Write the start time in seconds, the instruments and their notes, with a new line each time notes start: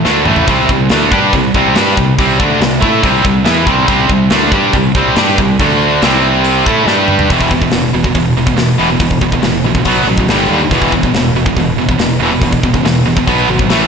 0.05 fingered electric bass D2, distorted electric guitar D3 A3 D4, snare
0.25 fingered electric bass A1, distorted electric guitar A2 E3 A3, mid tom
0.36 floor tom
0.47 fingered electric bass C2, distorted electric guitar C3 G3 C4, kick, open hi-hat
0.69 fingered electric bass C2, distorted electric guitar C3 G3, kick
0.89 fingered electric bass D2, distorted electric guitar D3 A3 D4, snare, open hi-hat
1.11 fingered electric bass G2, distorted electric guitar G3 D4 G4, kick
1.33 fingered electric bass C2, distorted electric guitar C3 G3, kick, open hi-hat
1.54 fingered electric bass C2, distorted electric guitar C3 G3 C4, kick
1.75 fingered electric bass G2, distorted electric guitar G3 D4 G4, snare, open hi-hat
1.97 fingered electric bass C2, distorted electric guitar C3 G3, kick
2.18 fingered electric bass C2, distorted electric guitar C3 G3 C4, kick, open hi-hat
2.38 fingered electric bass D2, distorted electric guitar D3 A3 D4, kick
2.61 fingered electric bass C2, distorted electric guitar C3 G3, snare, open hi-hat
2.81 fingered electric bass A2, distorted electric guitar A3 E4 A4, kick
3.02 fingered electric bass C2, distorted electric guitar C3 G3 C4, kick, open hi-hat
3.24 fingered electric bass C2, distorted electric guitar C3 G3, kick
3.45 fingered electric bass E2, distorted electric guitar E3 B3 E4, snare, open hi-hat
3.67 fingered electric bass C2, distorted electric guitar C3 G3 C4, kick
3.88 fingered electric bass C2, distorted electric guitar C3 G3 C4, kick, open hi-hat
4.09 fingered electric bass C2, distorted electric guitar C3 G3, kick
4.30 fingered electric bass D2, distorted electric guitar D3 A3 D4, snare, open hi-hat
4.52 fingered electric bass G2, distorted electric guitar G3 D4 G4, kick
4.73 fingered electric bass C2, distorted electric guitar C3 G3, kick, open hi-hat
4.95 fingered electric bass C2, distorted electric guitar C3 G3 C4, kick
5.16 fingered electric bass G2, distorted electric guitar G3 D4, snare, open hi-hat
5.20 distorted electric guitar G4
5.38 fingered electric bass C2, distorted electric guitar C3 G3, kick
5.60 fingered electric bass D2, distorted electric guitar D3 A3 D4, kick, open hi-hat
6.02 fingered electric bass C2, distorted electric guitar C3 G3 C4, snare, open hi-hat
6.44 open hi-hat
6.66 fingered electric bass A2, distorted electric guitar A3 E4 A4, kick
6.86 fingered electric bass G2, distorted electric guitar G3 D4 G4, snare
7.08 mid tom
7.19 floor tom
7.30 fingered electric bass E1, distorted electric guitar E2 B2 E3, kick, open hi-hat
7.41 kick
7.51 distorted electric guitar E2 B2, kick
7.62 distorted electric guitar E2 B2, kick
7.71 fingered electric bass E1, distorted electric guitar E2 B2, snare, open hi-hat
7.93 fingered electric bass E1, distorted electric guitar E2 B2
8.04 distorted electric guitar E2 B2, kick
8.14 fingered electric bass E1, distorted electric guitar E2 B2, kick, open hi-hat
8.37 fingered electric bass E1, distorted electric guitar E2 B2
8.47 distorted electric guitar E2 B2, kick
8.57 fingered electric bass E1, distorted electric guitar E2 B2, snare, open hi-hat
8.78 fingered electric bass E1, distorted electric guitar E2 B2 E3
8.90 distorted electric guitar E2 B2
9.00 fingered electric bass E1, distorted electric guitar E2 B2, kick, open hi-hat
9.11 kick
9.21 fingered electric bass E1, distorted electric guitar E2 B2, kick
9.32 distorted electric guitar E2 B2, kick
9.42 fingered electric bass E1, distorted electric guitar E2 B2, snare, open hi-hat
9.64 fingered electric bass A#1, distorted electric guitar E2 B2
9.75 distorted electric guitar E2 B2, kick
9.85 fingered electric bass B1, distorted electric guitar B2 F#3 B3, kick, open hi-hat
10.06 fingered electric bass A1, distorted electric guitar B2 F#3
10.18 distorted electric guitar B2 F#3, kick
10.27 fingered electric bass G1, distorted electric guitar G2 D3 G3, snare, open hi-hat
10.48 fingered electric bass D#2, distorted electric guitar G2
10.52 distorted electric guitar D3 G3
10.63 distorted electric guitar G2 D3
10.71 fingered electric bass E1, distorted electric guitar E2 B2 E3, kick, open hi-hat
10.82 kick
10.92 distorted electric guitar E2 B2, kick
11.03 distorted electric guitar E2 B2, kick
11.13 fingered electric bass E1, distorted electric guitar E2, snare, open hi-hat
11.17 distorted electric guitar B2
11.35 fingered electric bass E1, distorted electric guitar E2 B2
11.46 distorted electric guitar E2 B2, kick
11.56 fingered electric bass E1, distorted electric guitar E2 B2, kick, open hi-hat
11.77 fingered electric bass E1
11.81 distorted electric guitar E2 B2
11.89 distorted electric guitar E2 B2, kick
11.99 fingered electric bass E1, distorted electric guitar E2 B2, snare, open hi-hat
12.20 fingered electric bass E1, distorted electric guitar E2 B2
12.24 distorted electric guitar E3
12.34 distorted electric guitar E2 B2
12.42 fingered electric bass E1, distorted electric guitar E2 B2, kick, open hi-hat
12.53 kick
12.63 fingered electric bass E1, distorted electric guitar E2 B2, kick
12.74 distorted electric guitar E2 B2, kick
12.84 fingered electric bass E1, distorted electric guitar E2 B2, snare, open hi-hat
13.06 fingered electric bass E1, distorted electric guitar E2 B2
13.17 distorted electric guitar E2 B2, kick
13.27 fingered electric bass B1, distorted electric guitar B2 F#3 B3, kick, open hi-hat
13.49 fingered electric bass G#1, distorted electric guitar B2 F#3
13.58 distorted electric guitar B2 F#3, kick
13.69 fingered electric bass A1, distorted electric guitar A2 E3 A3, snare, open hi-hat